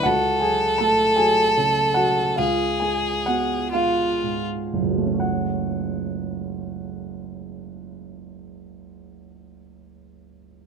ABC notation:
X:1
M:12/8
L:1/16
Q:3/8=44
K:F#m
V:1 name="Violin"
A12 G6 ^E3 z3 | z24 |]
V:2 name="Grand piano"
[Ff]2 [Gg]2 [Aa]2 [Gg]4 [Ff]2 [^E^e]2 [Gg]2 [Ff]2 [Ee]6 | [F,,,C,,F,A,CFf]24 |]
V:3 name="Grand piano" clef=bass
C,,2 F,2 A,2 F,2 C,2 F,2 C,,2 G,2 B,2 G,2 G,,2 G,2 | z24 |]